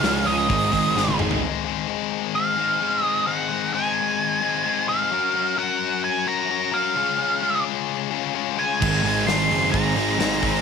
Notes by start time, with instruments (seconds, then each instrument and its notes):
Already playing: lead electric guitar F5
0.01 picked electric bass C#2, overdriven electric guitar C#3 G#3 C#4 F4 G#4, distorted electric guitar F3, snare, open hi-hat
0.25 picked electric bass C#2, distorted electric guitar C#3 F3 G#3 C#4, lead electric guitar D#5, open hi-hat
0.48 picked electric bass G#1, overdriven electric guitar G#2 D#3 G#3 C4 D#4 G#4, kick, open hi-hat
0.72 picked electric bass G#1, distorted electric guitar G#2 D#3, overdriven electric guitar G#3 C4 D#4 G#4, kick, open hi-hat
0.94 picked electric bass G#1, distorted electric guitar D#3, overdriven electric guitar G#3 C4 D#4 G#4, snare
1.08 high tom
1.18 picked electric bass G#1, overdriven electric guitar G#3 C4 D#4 G#4, mid tom
1.31 floor tom
1.40 overdriven electric guitar G#2 D#3 G#3 C4 D#4 G#4
1.64 overdriven electric guitar G#3 C4 D#4 G#4
1.88 overdriven electric guitar G#2 D#3 G#3 C4 D#4 G#4
2.35 lead electric guitar F5
2.57 overdriven electric guitar G#3 C4 D#4 G#4
2.80 overdriven electric guitar G#3 C4 D#4 G#4
3.03 overdriven electric guitar G#3 C4 D#4 G#4, lead electric guitar D#5
3.26 overdriven electric guitar G#2 D#3 G#3 C4 D#4 G#4, lead electric guitar F#5
3.49 overdriven electric guitar G#3 C4 D#4 G#4
3.72 overdriven electric guitar G#2 D#3 G#3 C4 D#4 G#4, lead electric guitar G#5
4.41 overdriven electric guitar G#3 C4 D#4 G#4
4.65 overdriven electric guitar G#3 C4 D#4 G#4
4.88 overdriven electric guitar G#3 C4 D#4 G#4, lead electric guitar F5
5.11 overdriven electric guitar F#3 C#4 F#4 A#4
5.34 overdriven electric guitar C#4 F#4 A#4
5.57 overdriven electric guitar F#3 C#4 F#4 A#4, lead electric guitar F#5
6.04 lead electric guitar G#5
6.27 overdriven electric guitar C#4 F#4 A#4, lead electric guitar A#5
6.49 overdriven electric guitar F#3 C#4 F#4 A#4
6.72 overdriven electric guitar C#4 F#4 A#4, lead electric guitar F5
6.95 overdriven electric guitar C#3 G#3 C#4 F4 G#4
7.18 overdriven electric guitar C#4 F4 G#4
7.41 overdriven electric guitar C#3 G#3 C#4 F4 G#4
8.11 overdriven electric guitar C#4 F4 G#4
8.34 overdriven electric guitar G#3 C#4 F4 G#4
8.57 overdriven electric guitar C#4 F4 G#4, lead electric guitar G#5
8.80 picked electric bass G#1, overdriven electric guitar G#2 D#3 G#3 C4 D#4 G#4, kick, crash
9.03 picked electric bass G#1, overdriven electric guitar G#3 C4 D#4 G#4, open hi-hat
9.26 picked electric bass G#1, overdriven electric guitar G#2 D#3 G#3 C4 D#4 G#4, lead electric guitar C6, snare, open hi-hat
9.50 picked electric bass F#1, distorted electric guitar G#2 D#3 G#3 C4 D#4, open hi-hat
9.72 picked electric bass G#1, distorted electric guitar D#3 G#3 C4 D#4, lead electric guitar A#5, kick, open hi-hat
9.95 picked electric bass G#1, distorted electric guitar D#3, overdriven electric guitar G#3 C4 D#4 G#4, open hi-hat
9.99 distorted electric guitar G#2
10.17 picked electric bass G#1, distorted electric guitar D#3, overdriven electric guitar G#3 C4 D#4 G#4, snare, open hi-hat
10.41 overdriven electric guitar G#3 C4 D#4 G#4, kick, open hi-hat
10.55 snare